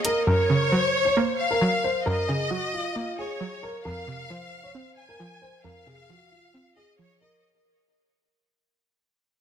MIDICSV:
0, 0, Header, 1, 5, 480
1, 0, Start_track
1, 0, Tempo, 447761
1, 289, Time_signature, 4, 2, 24, 8
1, 10079, End_track
2, 0, Start_track
2, 0, Title_t, "Violin section"
2, 0, Program_c, 0, 48
2, 50, Note_on_c, 0, 75, 76
2, 278, Note_off_c, 0, 75, 0
2, 292, Note_on_c, 0, 73, 108
2, 1448, Note_off_c, 0, 73, 0
2, 1487, Note_on_c, 0, 77, 83
2, 2166, Note_off_c, 0, 77, 0
2, 2212, Note_on_c, 0, 75, 109
2, 3368, Note_off_c, 0, 75, 0
2, 3408, Note_on_c, 0, 73, 84
2, 4086, Note_off_c, 0, 73, 0
2, 4124, Note_on_c, 0, 77, 108
2, 5284, Note_off_c, 0, 77, 0
2, 5323, Note_on_c, 0, 80, 86
2, 6004, Note_off_c, 0, 80, 0
2, 6053, Note_on_c, 0, 77, 112
2, 7208, Note_off_c, 0, 77, 0
2, 7247, Note_on_c, 0, 75, 85
2, 7476, Note_off_c, 0, 75, 0
2, 7486, Note_on_c, 0, 73, 98
2, 7715, Note_off_c, 0, 73, 0
2, 7729, Note_on_c, 0, 75, 73
2, 7957, Note_off_c, 0, 75, 0
2, 10079, End_track
3, 0, Start_track
3, 0, Title_t, "Grand piano"
3, 0, Program_c, 1, 0
3, 53, Note_on_c, 1, 70, 74
3, 248, Note_off_c, 1, 70, 0
3, 290, Note_on_c, 1, 70, 90
3, 741, Note_off_c, 1, 70, 0
3, 768, Note_on_c, 1, 72, 72
3, 1107, Note_off_c, 1, 72, 0
3, 1127, Note_on_c, 1, 73, 79
3, 1226, Note_off_c, 1, 73, 0
3, 1252, Note_on_c, 1, 72, 78
3, 1589, Note_off_c, 1, 72, 0
3, 1614, Note_on_c, 1, 70, 79
3, 1950, Note_off_c, 1, 70, 0
3, 1973, Note_on_c, 1, 72, 72
3, 2168, Note_off_c, 1, 72, 0
3, 2207, Note_on_c, 1, 70, 96
3, 2404, Note_off_c, 1, 70, 0
3, 2451, Note_on_c, 1, 68, 73
3, 2646, Note_off_c, 1, 68, 0
3, 2686, Note_on_c, 1, 66, 90
3, 2883, Note_off_c, 1, 66, 0
3, 2933, Note_on_c, 1, 65, 84
3, 3128, Note_off_c, 1, 65, 0
3, 3167, Note_on_c, 1, 65, 86
3, 3364, Note_off_c, 1, 65, 0
3, 3416, Note_on_c, 1, 68, 79
3, 3864, Note_off_c, 1, 68, 0
3, 3890, Note_on_c, 1, 70, 81
3, 4086, Note_off_c, 1, 70, 0
3, 4128, Note_on_c, 1, 70, 100
3, 4580, Note_off_c, 1, 70, 0
3, 4612, Note_on_c, 1, 72, 77
3, 4949, Note_off_c, 1, 72, 0
3, 4969, Note_on_c, 1, 73, 72
3, 5067, Note_off_c, 1, 73, 0
3, 5086, Note_on_c, 1, 72, 80
3, 5426, Note_off_c, 1, 72, 0
3, 5452, Note_on_c, 1, 70, 76
3, 5789, Note_off_c, 1, 70, 0
3, 5807, Note_on_c, 1, 72, 70
3, 6004, Note_off_c, 1, 72, 0
3, 6048, Note_on_c, 1, 70, 95
3, 6245, Note_off_c, 1, 70, 0
3, 6292, Note_on_c, 1, 68, 83
3, 6487, Note_off_c, 1, 68, 0
3, 6535, Note_on_c, 1, 66, 81
3, 6729, Note_off_c, 1, 66, 0
3, 6771, Note_on_c, 1, 65, 82
3, 6967, Note_off_c, 1, 65, 0
3, 7012, Note_on_c, 1, 65, 80
3, 7207, Note_off_c, 1, 65, 0
3, 7250, Note_on_c, 1, 68, 81
3, 7701, Note_off_c, 1, 68, 0
3, 7730, Note_on_c, 1, 70, 78
3, 7926, Note_off_c, 1, 70, 0
3, 10079, End_track
4, 0, Start_track
4, 0, Title_t, "Synth pluck"
4, 0, Program_c, 2, 84
4, 0, Note_on_c, 2, 58, 91
4, 0, Note_on_c, 2, 63, 92
4, 289, Note_off_c, 2, 63, 0
4, 289, Note_on_c, 2, 42, 92
4, 291, Note_off_c, 2, 58, 0
4, 533, Note_on_c, 2, 49, 75
4, 772, Note_on_c, 2, 54, 89
4, 1252, Note_on_c, 2, 58, 98
4, 1489, Note_off_c, 2, 42, 0
4, 1716, Note_off_c, 2, 54, 0
4, 1729, Note_on_c, 2, 54, 88
4, 1731, Note_off_c, 2, 49, 0
4, 2213, Note_on_c, 2, 42, 91
4, 2450, Note_on_c, 2, 49, 81
4, 2451, Note_off_c, 2, 58, 0
4, 2674, Note_off_c, 2, 54, 0
4, 2687, Note_on_c, 2, 54, 87
4, 3170, Note_on_c, 2, 58, 100
4, 3411, Note_off_c, 2, 42, 0
4, 3636, Note_off_c, 2, 54, 0
4, 3649, Note_on_c, 2, 54, 85
4, 3650, Note_off_c, 2, 49, 0
4, 4129, Note_off_c, 2, 54, 0
4, 4129, Note_on_c, 2, 41, 89
4, 4130, Note_off_c, 2, 58, 0
4, 4367, Note_on_c, 2, 48, 84
4, 4609, Note_on_c, 2, 53, 95
4, 5087, Note_on_c, 2, 60, 96
4, 5329, Note_off_c, 2, 41, 0
4, 5559, Note_off_c, 2, 53, 0
4, 5568, Note_off_c, 2, 48, 0
4, 5572, Note_on_c, 2, 53, 85
4, 6048, Note_on_c, 2, 41, 97
4, 6287, Note_on_c, 2, 48, 76
4, 6288, Note_off_c, 2, 60, 0
4, 6519, Note_off_c, 2, 53, 0
4, 6531, Note_on_c, 2, 53, 91
4, 7009, Note_on_c, 2, 60, 102
4, 7249, Note_off_c, 2, 41, 0
4, 7477, Note_off_c, 2, 53, 0
4, 7488, Note_off_c, 2, 48, 0
4, 7490, Note_on_c, 2, 53, 85
4, 7969, Note_off_c, 2, 60, 0
4, 7970, Note_off_c, 2, 53, 0
4, 10079, End_track
5, 0, Start_track
5, 0, Title_t, "Drums"
5, 49, Note_on_c, 9, 42, 72
5, 157, Note_off_c, 9, 42, 0
5, 10079, End_track
0, 0, End_of_file